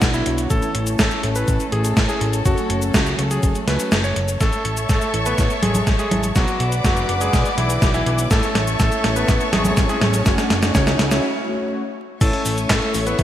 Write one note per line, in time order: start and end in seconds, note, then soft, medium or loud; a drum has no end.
0.00 0.23 B1 loud
0.00 0.48 D3 medium
0.00 0.48 F#3 medium
0.00 0.23 B3 medium
0.00 0.48 B3 medium
0.00 0.23 D4 medium
0.00 0.23 F#4 medium
0.00 0.48 F#4 medium
0.00 0.23 D5 medium
0.00 kick loud
0.00 snare loud
0.00 closed hi-hat soft
0.00 cabasa soft
0.14 0.39 E4 loud
0.14 closed hi-hat soft
0.14 cabasa soft
0.26 0.47 B1 loud
0.26 0.47 B3 medium
0.26 0.47 D4 medium
0.26 0.47 F#4 medium
0.26 0.47 C#5 loud
0.26 closed hi-hat medium
0.38 closed hi-hat medium
0.38 cabasa medium
0.50 0.61 A1 loud
0.50 2.44 E3 medium
0.50 1.21 A3 loud
0.50 2.44 A3 medium
0.50 1.21 C#4 medium
0.50 4.37 C#4 medium
0.50 1.21 E4 medium
0.50 0.84 A4 medium
0.50 4.37 A4 medium
0.50 1.21 C#5 loud
0.50 kick loud
0.50 closed hi-hat medium
0.50 cabasa medium
0.62 closed hi-hat soft
0.62 cabasa soft
0.75 0.96 A1 medium
0.75 closed hi-hat loud
0.87 closed hi-hat medium
0.87 cabasa medium
0.99 1.10 A1 medium
0.99 1.24 A4 medium
0.99 kick loud
0.99 snare loud
0.99 closed hi-hat medium
0.99 cabasa soft
1.11 closed hi-hat soft
1.11 cabasa soft
1.23 1.45 A1 medium
1.23 2.43 A3 medium
1.23 2.43 C#4 medium
1.23 2.43 E4 medium
1.23 2.43 C#5 medium
1.23 closed hi-hat medium
1.36 1.61 B4 medium
1.36 closed hi-hat medium
1.36 cabasa medium
1.48 1.58 A1 medium
1.48 kick loud
1.48 closed hi-hat medium
1.48 cabasa soft
1.60 closed hi-hat soft
1.60 cabasa soft
1.72 1.93 A1 medium
1.72 1.98 G#4 medium
1.72 closed hi-hat medium
1.84 closed hi-hat medium
1.84 cabasa medium
1.97 2.07 A1 medium
1.97 kick loud
1.97 snare loud
1.97 closed hi-hat medium
1.97 cabasa soft
2.09 2.34 G#4 medium
2.09 closed hi-hat soft
2.09 cabasa soft
2.21 2.42 A1 loud
2.21 closed hi-hat medium
2.33 closed hi-hat medium
2.33 cabasa medium
2.45 2.56 F#1 loud
2.45 4.39 F#3 medium
2.45 4.39 A3 medium
2.45 3.16 A3 loud
2.45 3.16 C#4 medium
2.45 2.79 F#4 medium
2.45 3.16 F#4 medium
2.45 3.16 C#5 loud
2.45 kick loud
2.45 closed hi-hat medium
2.45 cabasa soft
2.58 closed hi-hat soft
2.58 cabasa soft
2.70 2.91 F#1 medium
2.70 closed hi-hat loud
2.82 closed hi-hat medium
2.82 cabasa medium
2.94 3.15 C#2 loud
2.94 3.20 F#4 medium
2.94 kick loud
2.94 snare loud
2.94 closed hi-hat medium
2.94 cabasa medium
3.07 closed hi-hat soft
3.07 cabasa soft
3.19 3.40 C#2 loud
3.19 3.65 A3 medium
3.19 3.65 C#4 medium
3.19 3.65 F#4 medium
3.19 3.65 C#5 medium
3.19 closed hi-hat medium
3.31 3.56 G#4 medium
3.31 closed hi-hat medium
3.31 cabasa medium
3.43 3.54 F#1 loud
3.43 kick loud
3.43 closed hi-hat medium
3.43 cabasa soft
3.55 closed hi-hat soft
3.55 cabasa soft
3.67 3.78 C#2 loud
3.67 3.77 A3 loud
3.67 3.77 C#4 medium
3.67 3.77 F#4 medium
3.67 3.93 B4 medium
3.67 3.77 C#5 loud
3.67 snare medium
3.67 closed hi-hat medium
3.80 4.02 A3 medium
3.80 4.02 C#4 medium
3.80 4.02 F#4 medium
3.80 4.02 C#5 medium
3.80 closed hi-hat medium
3.80 cabasa medium
3.92 4.13 F#1 loud
3.92 snare loud
3.92 closed hi-hat medium
3.92 cabasa soft
4.04 4.29 C#5 loud
4.04 closed hi-hat soft
4.04 cabasa soft
4.16 4.37 F#1 medium
4.16 closed hi-hat medium
4.28 closed hi-hat medium
4.28 cabasa medium
4.41 4.51 A1 loud
4.41 4.74 A3 medium
4.41 5.11 E4 medium
4.41 6.34 A4 medium
4.41 4.74 A4 medium
4.41 6.34 C#5 medium
4.41 6.34 E5 medium
4.41 6.34 C#6 medium
4.41 kick loud
4.41 snare medium
4.41 closed hi-hat medium
4.41 riser medium
4.41 cabasa soft
4.53 closed hi-hat soft
4.53 cabasa soft
4.65 4.86 A1 medium
4.65 closed hi-hat loud
4.77 closed hi-hat medium
4.77 cabasa medium
4.89 5.00 A1 medium
4.89 5.15 A3 medium
4.89 5.15 A4 medium
4.89 kick loud
4.89 snare medium
4.89 closed hi-hat medium
4.89 cabasa soft
5.02 closed hi-hat soft
5.02 cabasa soft
5.14 5.35 A1 medium
5.14 6.33 C#4 medium
5.14 6.33 E4 medium
5.14 6.33 C#5 medium
5.14 closed hi-hat loud
5.26 5.51 B3 medium
5.26 5.51 B4 medium
5.26 closed hi-hat medium
5.26 cabasa medium
5.38 5.49 A1 medium
5.38 kick loud
5.38 snare soft
5.38 closed hi-hat soft
5.38 cabasa soft
5.50 closed hi-hat soft
5.50 cabasa soft
5.62 5.84 A1 medium
5.62 5.88 G#3 medium
5.62 5.88 G#4 medium
5.62 closed hi-hat loud
5.62 high conga medium
5.75 closed hi-hat medium
5.75 high conga medium
5.75 cabasa medium
5.87 5.97 A1 medium
5.87 kick loud
5.87 snare medium
5.87 closed hi-hat medium
5.87 cabasa soft
5.99 6.24 G#3 medium
5.99 6.24 G#4 medium
5.99 closed hi-hat soft
5.99 cabasa soft
6.11 6.32 A1 medium
6.11 closed hi-hat medium
6.11 high conga medium
6.24 closed hi-hat medium
6.24 cabasa medium
6.36 6.46 B1 loud
6.36 6.69 F#3 medium
6.36 7.06 D4 medium
6.36 6.69 F#4 loud
6.36 8.29 B4 medium
6.36 8.29 D5 medium
6.36 8.29 F#5 medium
6.36 8.29 D6 medium
6.36 kick loud
6.36 snare medium
6.36 closed hi-hat medium
6.36 cabasa soft
6.48 closed hi-hat soft
6.48 cabasa soft
6.60 6.81 B1 medium
6.60 closed hi-hat medium
6.72 closed hi-hat medium
6.72 cabasa medium
6.84 7.06 F#1 loud
6.84 7.10 F#3 medium
6.84 7.10 F#4 medium
6.84 kick loud
6.84 snare medium
6.84 closed hi-hat medium
6.84 cabasa soft
6.97 closed hi-hat soft
6.97 cabasa soft
7.09 7.30 F#1 medium
7.09 8.04 B3 medium
7.09 8.04 D4 medium
7.09 8.04 F#4 medium
7.09 8.04 D5 medium
7.09 closed hi-hat medium
7.21 7.46 G#3 medium
7.21 7.46 G#4 medium
7.21 closed hi-hat medium
7.21 cabasa medium
7.33 7.44 B1 loud
7.33 kick loud
7.33 snare medium
7.33 closed hi-hat soft
7.33 cabasa soft
7.46 closed hi-hat soft
7.46 cabasa soft
7.58 7.79 B1 loud
7.58 7.83 E3 medium
7.58 7.83 E4 medium
7.58 closed hi-hat medium
7.70 closed hi-hat medium
7.70 cabasa medium
7.82 8.03 B1 loud
7.82 kick loud
7.82 snare medium
7.82 closed hi-hat medium
7.82 cabasa soft
7.94 8.20 E3 medium
7.94 8.20 E4 loud
7.94 closed hi-hat soft
7.94 cabasa soft
8.06 8.28 B1 loud
8.06 8.28 B3 medium
8.06 8.28 D4 medium
8.06 8.28 F#4 medium
8.06 8.28 C#5 loud
8.06 closed hi-hat medium
8.19 closed hi-hat medium
8.19 cabasa medium
8.31 8.41 A1 loud
8.31 8.65 A3 medium
8.31 9.01 A3 loud
8.31 8.65 A4 loud
8.31 11.21 A4 medium
8.31 11.21 C#5 medium
8.31 10.24 E5 medium
8.31 11.21 C#6 medium
8.31 kick loud
8.31 snare medium
8.31 closed hi-hat medium
8.31 cabasa medium
8.43 closed hi-hat soft
8.43 cabasa soft
8.55 8.76 A1 medium
8.55 snare medium
8.55 closed hi-hat medium
8.68 closed hi-hat soft
8.68 cabasa medium
8.80 8.90 A1 medium
8.80 9.05 A3 medium
8.80 9.05 A4 medium
8.80 kick loud
8.80 snare medium
8.80 closed hi-hat medium
8.80 cabasa medium
8.92 closed hi-hat soft
8.92 cabasa soft
9.04 9.25 A1 medium
9.04 10.23 A3 medium
9.04 10.23 C#4 medium
9.04 10.23 E4 medium
9.04 10.23 C#5 medium
9.04 snare medium
9.04 closed hi-hat medium
9.16 9.41 B3 medium
9.16 9.41 B4 medium
9.16 closed hi-hat soft
9.16 cabasa medium
9.28 9.39 A1 medium
9.28 kick loud
9.28 snare medium
9.28 closed hi-hat soft
9.28 cabasa soft
9.41 closed hi-hat soft
9.41 cabasa soft
9.53 9.74 A1 medium
9.53 9.78 G#3 medium
9.53 9.78 G#4 medium
9.53 snare medium
9.53 closed hi-hat medium
9.53 high conga medium
9.65 closed hi-hat medium
9.65 high conga medium
9.65 cabasa medium
9.77 9.88 A1 medium
9.77 kick loud
9.77 snare medium
9.77 closed hi-hat soft
9.77 cabasa soft
9.89 10.15 G#3 medium
9.89 10.15 G#4 loud
9.89 closed hi-hat soft
9.89 cabasa soft
10.02 10.23 A1 medium
10.02 snare medium
10.02 closed hi-hat medium
10.02 high conga medium
10.14 closed hi-hat medium
10.14 cabasa medium
10.26 10.37 F#1 loud
10.26 10.96 A3 loud
10.26 10.60 C#4 medium
10.26 10.96 C#4 medium
10.26 10.96 F#4 medium
10.26 10.60 C#5 medium
10.26 10.96 C#5 loud
10.26 11.23 F#5 medium
10.26 kick loud
10.26 snare medium
10.26 closed hi-hat soft
10.26 cabasa medium
10.38 snare medium
10.38 closed hi-hat soft
10.38 cabasa soft
10.50 10.71 F#1 medium
10.50 snare loud
10.50 closed hi-hat medium
10.63 snare medium
10.63 closed hi-hat soft
10.63 cabasa medium
10.75 10.96 C#2 loud
10.75 11.00 C#4 medium
10.75 11.00 C#5 medium
10.75 kick loud
10.75 snare loud
10.75 closed hi-hat medium
10.75 cabasa medium
10.87 snare medium
10.87 closed hi-hat soft
10.87 cabasa soft
10.99 11.20 C#2 medium
10.99 11.46 A3 medium
10.99 11.46 C#4 medium
10.99 11.46 F#4 medium
10.99 11.46 C#5 medium
10.99 snare loud
10.99 closed hi-hat medium
11.11 11.24 C#4 medium
11.11 11.24 C#5 medium
11.11 snare medium
11.11 closed hi-hat soft
11.11 cabasa medium
11.48 11.57 A3 medium
11.48 11.57 C#4 medium
11.48 11.57 F#4 medium
11.48 11.57 C#5 loud
11.60 11.83 A3 medium
11.60 11.82 C#4 medium
11.60 11.82 F#4 medium
11.60 11.83 C#5 medium
12.21 12.32 A1 loud
12.21 12.91 A3 loud
12.21 12.55 A3 medium
12.21 12.91 C#4 medium
12.21 12.91 E4 medium
12.21 13.23 A4 medium
12.21 12.55 A4 loud
12.21 12.91 C#5 loud
12.21 13.23 C#5 medium
12.21 13.23 E5 medium
12.21 13.23 C#6 medium
12.21 kick loud
12.21 closed hi-hat loud
12.21 crash loud
12.21 cabasa soft
12.33 closed hi-hat soft
12.46 12.67 A1 medium
12.46 open hi-hat loud
12.46 cabasa medium
12.58 closed hi-hat soft
12.58 cabasa soft
12.70 12.80 A1 medium
12.70 12.95 A3 medium
12.70 12.95 A4 medium
12.70 kick loud
12.70 snare loud
12.70 clap loud
12.70 closed hi-hat loud
12.70 cabasa soft
12.82 closed hi-hat soft
12.94 13.15 A1 medium
12.94 13.23 A3 medium
12.94 13.23 C#4 medium
12.94 13.23 E4 medium
12.94 13.23 C#5 medium
12.94 open hi-hat loud
12.94 cabasa medium
13.07 13.23 B3 medium
13.07 13.23 B4 medium
13.07 closed hi-hat soft
13.07 cabasa soft
13.19 13.23 A1 medium
13.19 kick loud
13.19 closed hi-hat medium
13.19 cabasa soft